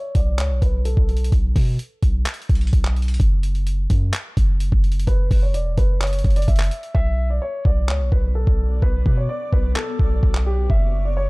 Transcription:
Already playing: C#5
0.15 B1 D5, kick, closed hi-hat
0.38 C#2 C#5, clap, closed hi-hat
0.50 B1
0.62 B1 B4, kick, closed hi-hat
0.85 A4, closed hi-hat
0.97 B1, kick
1.09 closed hi-hat
1.17 closed hi-hat
1.24 closed hi-hat
1.32 B1, kick, closed hi-hat
1.56 B2, kick, open hi-hat
1.79 closed hi-hat
2.03 B1, kick, closed hi-hat
2.26 clap, closed hi-hat
2.34 closed hi-hat
2.42 closed hi-hat
2.49 B1, kick, closed hi-hat
2.55 closed hi-hat
2.61 closed hi-hat
2.67 closed hi-hat
2.73 B1, kick, closed hi-hat
2.85 clap
2.96 closed hi-hat
3.02 closed hi-hat
3.08 closed hi-hat
3.14 closed hi-hat
3.20 F#1, kick, closed hi-hat
3.43 closed hi-hat
3.55 closed hi-hat
3.67 closed hi-hat
3.90 F#2, kick, closed hi-hat
4.13 clap, closed hi-hat
4.37 F#1, kick, closed hi-hat
4.60 closed hi-hat
4.72 F#1, kick
4.84 closed hi-hat
4.92 closed hi-hat
5.00 closed hi-hat
5.07 F#1 B4, kick, closed hi-hat
5.31 F#1, kick, open hi-hat
5.42 C#5
5.54 E1 D5, closed hi-hat
5.78 F#1 B4, kick, closed hi-hat
6.01 C#5, clap, closed hi-hat
6.07 closed hi-hat
6.13 closed hi-hat
6.19 closed hi-hat
6.24 F#1, kick, closed hi-hat
6.30 closed hi-hat
6.36 D5, closed hi-hat
6.42 closed hi-hat
6.48 F#1 E5, kick, closed hi-hat
6.56 clap, closed hi-hat
6.64 closed hi-hat
6.71 closed hi-hat
6.83 closed hi-hat
6.95 B1 B3 F#4 C#5 D5 E5, kick
7.30 D5
7.42 C#5
7.65 B1 D5, kick
7.88 C#2 C#5, clap
8.00 B1
8.12 B1 B4, kick
8.35 A4
8.47 B1, kick
8.82 B1 B4, kick
9.06 B2, kick
9.17 C#5
9.29 D5
9.53 B1 B4, kick
9.76 A4, clap
9.99 B1, kick
10.23 B1, kick
10.35 clap
10.46 G4
10.70 F#1 F#3 A4 E5, kick
11.05 D5
11.17 C#5

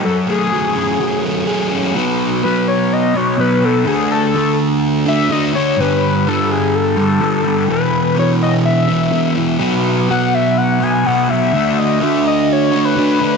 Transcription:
0.04 F#2 A4
0.28 A3 G#4
0.52 F#3
0.75 C#4
1.00 F#3
1.25 A3
1.47 G#4
1.72 C#4
1.94 B2 F#3 B3
2.43 B2 F#3 B3 B4
2.68 C#5
2.93 D#5
3.14 F#3 B3 C#5
3.38 B2 F#3 B3 B4
3.62 F#3 B3 A4
3.85 D3 A3 D4 G#4
4.12 A4
4.34 D3 A3 D4
5.06 A3 D4 E5
5.29 D3 A3 D4 D#5
5.54 A3 D4 C#5
5.77 G2 D3 G3 B4
6.26 G2 D3 G3 A4
6.51 G#4
6.75 A4
6.97 D3 G3
7.20 G2 D3 G3
7.43 D3 G3
7.68 E2 B2 E3 B4
8.15 E2 B2 E3 C#5
8.43 D#5
8.65 E5
8.89 B2 E3
9.11 E2 B2 E3
9.36 B2 E3
9.59 B2 F#3 B3
10.08 B2 F#3 B3 F#5
10.34 E5
10.58 F#5
10.80 F#3 B3 G#5
11.05 B2 F#3 B3 F#5
11.29 F#3 B3 E5
11.52 D3 A3 D4
11.78 D#5
12.00 D3 A3 D4 E5
12.27 D#5
12.53 C#5
12.71 A3 D4
12.85 B4
12.95 D3 A3 D4
13.20 A3 D4

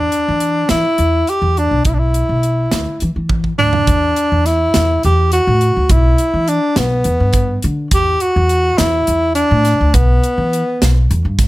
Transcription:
Already playing: D4
0.12 closed hi-hat
0.28 E3
0.40 closed hi-hat
0.69 E3 E4, snare, closed hi-hat
0.98 E2, closed hi-hat
1.27 G4, closed hi-hat
1.42 E2
1.57 D4, closed hi-hat
1.71 B1
1.85 B1 E4, kick, closed hi-hat
1.94 D4
1.99 E4
2.14 closed hi-hat
2.29 B1
2.43 closed hi-hat
2.71 D2, snare, closed hi-hat
3.00 E3, closed hi-hat
3.16 E3
3.29 kick, high tom
3.44 kick
3.58 D2 D4, mid tom
3.73 floor tom
3.87 E2, kick, closed hi-hat
4.16 closed hi-hat
4.32 E2
4.46 E4, snare, closed hi-hat
4.74 E2, snare, closed hi-hat
5.03 E2 G4, closed hi-hat
5.32 F#4, closed hi-hat
5.47 A2
5.61 closed hi-hat
5.77 D2
5.89 B1 E4, kick, closed hi-hat
6.18 closed hi-hat
6.34 E3
6.48 D4, closed hi-hat
6.76 B1 B3, snare, closed hi-hat
7.04 E2, closed hi-hat
7.20 G2
7.33 kick, closed hi-hat
7.62 D3, closed hi-hat
7.91 E2 G4, kick, closed hi-hat
8.20 F#4, closed hi-hat
8.36 E2
8.49 closed hi-hat
8.78 E2 E4, snare, closed hi-hat
9.07 E2, closed hi-hat
9.35 D4, closed hi-hat
9.51 A2
9.65 snare, closed hi-hat
9.81 D2
9.94 B1 B3, kick, closed hi-hat
10.24 closed hi-hat
10.38 E3
10.53 closed hi-hat
10.82 B1, snare, closed hi-hat
11.11 E2, closed hi-hat
11.25 G2
11.39 kick, snare, closed hi-hat

